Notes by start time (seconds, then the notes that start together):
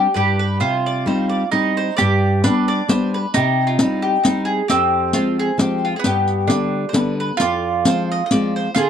Already playing: D4 G4
0.14 G2 G4 B4
0.39 B4
0.60 C3 F4 C5
0.86 D5
1.06 G3 C4 D#4 C5
1.29 D5
1.51 G3 C4 D#4 D#5
1.77 C5
1.97 G2 G4 D5, riq
2.44 G3 B3 D4 B4, riq
2.68 D5
2.89 G3 B3 D4 C5, riq
3.14 B4
3.34 C3 D#4 G4, riq
3.67 F4
3.79 G3 C4 D#4, riq
4.02 G4
4.24 G3 C4 D#4, riq
4.45 G#4
4.68 F2 C4 G4, riq
5.13 F3 G#3 C4 F4, riq
5.39 G#4
5.58 F3 G#3 C4 G4, riq
5.85 F4
5.96 B3 G#4
6.04 G2 G4, riq
6.28 riq
6.47 D3 G3 B3 D4, riq
6.89 C5
6.93 D3 G3 B3 B4, riq
7.20 B4
7.37 F2 F4 D5, riq
7.85 F3 G#3 C4 C5, riq
8.12 D#5
8.26 D#5
8.31 F3 G#3 C4 D5, riq
8.56 C5
8.75 D3 F4 G#4, riq